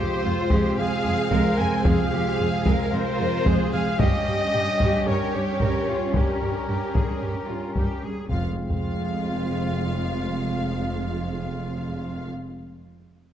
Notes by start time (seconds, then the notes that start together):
Already playing: C3 G#3 C4 F4 G4 C5
0.23 F2 G#3 F4
0.50 F2 G#3 G4, taiko
0.77 F2 G#3 G#4 F5
1.04 F2 G#3
1.31 F2 G#3 A#4, taiko
1.57 F2 G#3 C5 G#5
1.84 F2 G#3 G#4 F5, taiko
2.11 F2 G#3 G4
2.39 F2 G#3 G#4
2.65 F2 G#3 A#4, taiko
2.92 F2 G#3 F4 C5
3.18 F2 G#3
3.46 F2 G#3 G#4, taiko
3.72 F2 G#3 G#4 F5
3.99 G2 G3 C#4 G4 D#5, taiko
4.26 G2 G3 G4
4.54 G2 G3
4.80 G2 G3, taiko
5.07 G2 G3 G4 A#4 C#5
5.34 G2 G3 G4
5.60 G2 G3 A#4, taiko
5.87 G2 G3 F4
6.14 G2 G3 C#4 G4 A#4, taiko
6.41 G2 G3
6.68 G2 G3 G4
6.95 G2 G3 G#4, taiko
7.21 G2 G3 G4
7.49 G2 G3 F4
7.75 G2 G3 G4, taiko
8.02 G2 G3 G#4
8.29 F1 F2 C3 G#3 C4 F4 F5, taiko
8.69 F1 F2 G#3 F4 F5, taiko